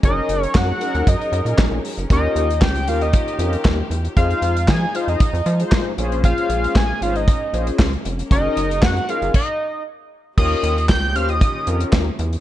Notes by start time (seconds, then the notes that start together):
0.03 F#1 F#3 C#4 D#4 G#4 A#4 D#5, kick, closed hi-hat
0.29 F#1, closed hi-hat
0.43 C#5, closed hi-hat
0.55 F#2 F#5, kick, snare, clap
0.80 C#4 D#4 G#4 A#4, closed hi-hat
0.95 D#2, closed hi-hat
1.07 F#2 D#5, kick, closed hi-hat
1.22 closed hi-hat
1.32 F#2 G#4 A#4, closed hi-hat
1.45 A#2 C#4 D#4 G#4 A#4, closed hi-hat
1.58 A#1, kick, snare, clap
1.71 A#1
1.85 open hi-hat
1.98 F#1, closed hi-hat
2.10 D#2 D#3 A#3 C#4 F4 G4 A#4 D#5, kick, closed hi-hat
2.36 D#2, closed hi-hat
2.50 closed hi-hat
2.61 C#2 G5, kick, snare, clap
2.75 closed hi-hat
2.87 D#2 C#4 F4 G4 A#4 F5, closed hi-hat
3.01 D#5, closed hi-hat
3.13 kick, closed hi-hat
3.26 G4 A#4, closed hi-hat
3.39 F2 C#4 F4 G4 A#4, closed hi-hat
3.53 closed hi-hat
3.65 D#2, kick, snare, clap
3.90 E2, closed hi-hat
4.05 closed hi-hat
4.16 F2 F3 G#3 D#4 F4 G#4 C5 F5, kick, closed hi-hat
4.30 closed hi-hat
4.42 F2, closed hi-hat
4.57 closed hi-hat
4.68 F3 G#5, kick, snare, clap
4.94 D#4 F4 G#4 C5 F5, closed hi-hat
5.08 F2 D#5, closed hi-hat
5.20 kick, closed hi-hat
5.33 F2, closed hi-hat
5.46 F3 G#4 A#4, closed hi-hat
5.60 D#4 F4 G#4 C5, closed hi-hat
5.72 kick, snare, clap
5.98 A#1 A#3 C#4 F4 G#4 C5, closed hi-hat
6.12 closed hi-hat
6.24 F5, kick, closed hi-hat
6.38 closed hi-hat
6.49 A#1, closed hi-hat
6.64 closed hi-hat
6.75 A#1 G#5, kick, snare, clap
7.02 G#1 C#4 F4 G#4 C5 F5, closed hi-hat
7.16 D#5, closed hi-hat
7.28 kick, closed hi-hat
7.41 G#4 C5
7.53 A#1 C#4 F4 G#4 C5, closed hi-hat
7.67 closed hi-hat
7.79 C#2, kick, snare, clap
7.93 closed hi-hat
8.05 F1, closed hi-hat
8.19 closed hi-hat
8.30 F#1 F#3 C#4 D#4 G#4 A#4 D#5, kick, closed hi-hat
8.57 F#1, closed hi-hat
8.71 closed hi-hat
8.82 F#2 F#5, kick, snare, clap
8.97 closed hi-hat
9.08 C#4 D#4 G#4 A#4 F5, closed hi-hat
9.22 F#1, closed hi-hat
9.34 D#5, kick, crash
10.37 D#2 D#3 A#3 C#4 F4 G4 A#4 D#6, kick, crash
10.63 D#2, closed hi-hat
10.78 closed hi-hat
10.89 C#2 G6, kick, snare, clap
11.14 D#2 C#4 F4 G4 C5 F6, closed hi-hat
11.29 D#6, closed hi-hat
11.41 kick, closed hi-hat
11.54 G4 C#5
11.66 F2 C#4 F4 G4 A#4, closed hi-hat
11.80 closed hi-hat
11.93 D#2, kick, snare, clap
12.19 E2, closed hi-hat
12.33 closed hi-hat